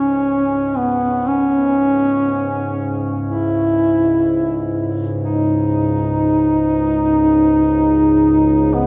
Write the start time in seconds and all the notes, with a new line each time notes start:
Already playing: C#2 G#2 C#4
0.77 B3
1.27 C#4
3.24 E4
5.22 D#4
8.74 B3